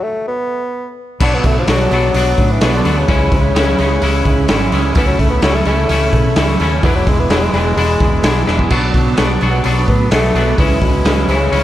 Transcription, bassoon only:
0.03 A3
0.28 B3
1.22 D4
1.34 B3
1.46 A3
1.59 F#3
2.52 E3
2.75 D3
2.98 C#3
3.34 C#3
4.97 B3
5.07 F#3
5.20 A3
5.31 B3
5.43 F#3
5.54 A3
5.67 A3
6.84 B3
6.96 F#3
7.08 G#3
7.20 B3
7.32 F#3
7.42 G#3
7.54 G#3
9.89 B3
10.12 A3
10.59 E3
10.81 B2
11.29 C#3

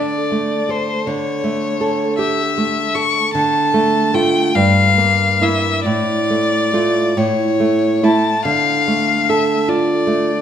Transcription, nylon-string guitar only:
Already playing: D3 D4 A4
0.32 A3
0.69 A4
1.07 D3
1.44 A3
1.81 A4
2.19 G4
2.58 A3
2.95 A4
3.35 D3
3.74 A3
4.14 A3 F4
4.55 G2
4.98 A#3
5.41 A#3 E4
5.86 A2
6.30 A3
6.74 A3 F4
7.17 A2
7.60 A3
8.03 A3 E4
8.45 D3
8.88 A3
9.30 A4
9.68 F4
10.07 A3

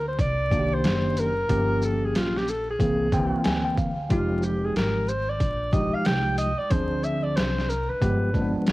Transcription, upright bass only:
Already playing: D2
0.19 C2
0.84 F#1
1.50 G1
2.15 A#1
2.80 C2
3.33 muted upright bass stroke
3.45 D2
4.11 F1
4.76 G#1
5.41 A#1
5.94 muted upright bass stroke
6.06 C2
6.60 muted upright bass stroke
6.71 D2
7.37 C2
7.90 muted upright bass stroke
8.02 G1
8.55 muted upright bass stroke
8.68 B1

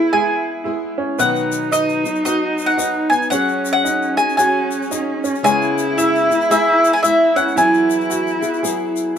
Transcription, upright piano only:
Already playing: E4
0.12 G#4
0.64 E4
0.98 C#4
1.18 B3
1.71 D#4
2.25 F#4
2.78 D#4
3.11 B3
3.32 C#4
3.84 D#4
4.38 F#4
4.91 D#4
5.24 C#4
5.45 C#4
5.98 E4
6.51 G#4
7.04 E4
7.36 C#4
7.56 E4
8.10 F#4
8.63 G#4

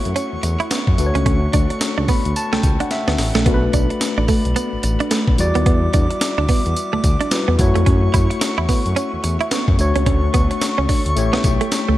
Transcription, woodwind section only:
Already playing: A4 E5 F#5 C#6
0.99 D4
3.46 D5 B5
5.39 G3 E5 D6
7.59 A4 E5 F#5 C#6
9.79 D4 A4 F#5 C#6
11.17 E5 G5

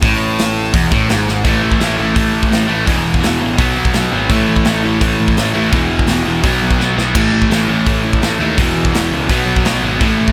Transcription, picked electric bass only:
0.03 A1
0.74 E1
0.92 A1
1.09 G#1
1.45 A1
1.63 A1
1.81 A1
1.99 A1
2.16 A1
2.34 A1
2.52 A1
2.70 A1
2.88 E1
3.05 E1
3.23 E1
3.42 A1
3.58 B1
3.76 B1
3.95 B1
4.12 G#1
4.30 A1
4.48 A1
4.67 A1
4.84 A1
5.02 A1
5.20 A1
5.38 A1
5.55 A1
5.73 E1
5.90 E1
6.07 E1
6.26 E1
6.44 B1
6.62 B1
6.79 B1
6.97 B1
7.15 A1
7.33 A1
7.50 A1
7.69 A1
7.87 A1
8.05 A1
8.22 A1
8.39 D#2
8.58 E1
8.76 E1
8.94 E1
9.12 C#2
9.30 B1
9.46 B1
9.64 B1
9.83 G#1
10.01 A1
10.19 A1

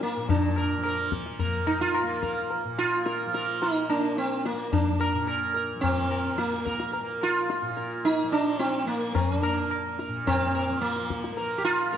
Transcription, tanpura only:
Already playing: A#2 F3 A#3
0.17 A#2
0.78 F3
1.41 A#3
2.03 A#3
2.65 A#2
3.27 F3
3.89 A#3
4.52 A#3
5.13 A#2
5.75 F3
6.38 A#3
7.00 A#3
7.62 A#2
8.23 F3
8.84 A#3
9.46 A#3
10.08 A#2
10.70 F3
11.32 A#3
11.93 A#3

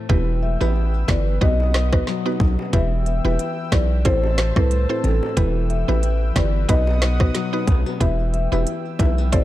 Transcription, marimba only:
0.43 E5
1.09 D5
1.42 D#5
2.73 E5
3.06 E5
3.25 E5
3.72 D5
4.05 C5
4.57 B4
5.04 A4
5.70 E5
6.36 D5
6.69 D#5
8.01 E5
8.34 E5
8.52 E5
9.00 E5
9.33 D5

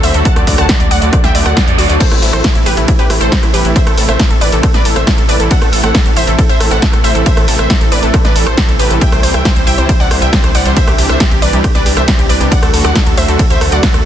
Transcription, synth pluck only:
0.03 C5 E5
0.15 A4
0.25 F#5 A5
0.36 D5
0.47 D5
0.58 F#5 A5
0.69 D5
0.80 D5
0.91 D5 F#5
1.02 D5
1.13 D5
1.24 E5 G5
1.35 D5
1.46 D5 F#5
1.57 D5
1.67 D5
1.78 F#4 D5
1.89 D5
2.00 A4 C5
2.11 E4
2.22 E4
2.33 A4 C5
2.44 E4
2.55 E4
2.66 G4 B4
2.77 E4
2.88 E4
2.99 G4 B4
3.10 E4
3.21 A4 C5
3.31 E4
3.43 E4
3.54 G4 B4
3.65 E4
3.76 C5 E5
3.87 A4
3.98 A4
4.09 C5 E5
4.20 A4
4.30 A4
4.41 B4 D5
4.52 A4
4.63 A4
4.74 B4 D5
4.85 A4
4.96 C5 E5
5.07 A4
5.18 A4
5.29 B4 D5
5.40 A4
5.51 A4 F#5
5.62 A4
5.72 A4
5.83 A4 F#5
5.94 A4
6.06 A4
6.17 C5 E5
6.27 A4
6.38 A4
6.49 C5 E5
6.60 A4
6.71 A4 F#5
6.82 A4
6.93 A4
7.04 C5 E5
7.15 A4
7.26 C5 E5
7.37 A4
7.48 A4
7.59 C5 E5
7.70 A4
7.81 A4
7.92 B4 D5
8.03 A4
8.14 A4
8.25 B4 D5
8.36 A4
8.46 A4 C5
8.68 A4
8.79 G4 B4
8.90 A4
9.01 E5 G5
9.12 C5
9.23 C5
9.34 E5 G5
9.45 C5
9.56 C5
9.67 E5 G5
9.78 C5
9.89 C5
10.00 D5 F#5
10.11 C5
10.22 E5 G5
10.44 C5
10.55 D5 F#5
10.66 C5
10.77 C5 E5
10.88 G4
10.99 G4
11.10 C5 E5
11.20 G4
11.31 G4
11.42 B4 D5
11.53 G4
11.64 G4
11.75 B4 D5
11.86 G4
11.97 C5 E5
12.08 G4
12.19 G4
12.29 B4 D5
12.40 G4
12.51 D5 F#5
12.62 A4
12.73 A4
12.84 D5 F#5
12.96 A4
13.07 A4
13.17 C5 E5
13.28 A4
13.40 A4
13.50 C5 E5
13.61 A4
13.72 D5 F#5
13.94 A4

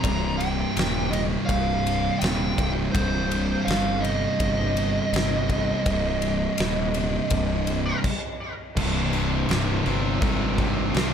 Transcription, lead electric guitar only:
Already playing: A#5
0.38 G5
1.11 D#5
1.46 F5
2.19 G5
2.92 C5
3.65 F5
4.00 D#5

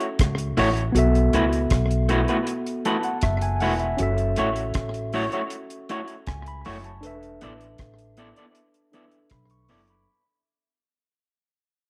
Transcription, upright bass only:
0.20 C#2
0.57 A1
0.95 B1
1.33 C#2
1.71 B1
3.23 F#1
3.62 E1
4.00 F#1
4.38 A1
4.75 A1
6.28 C#2
6.66 F#1
7.04 E1
7.43 A1
7.80 A1
9.31 B1
9.71 F#1

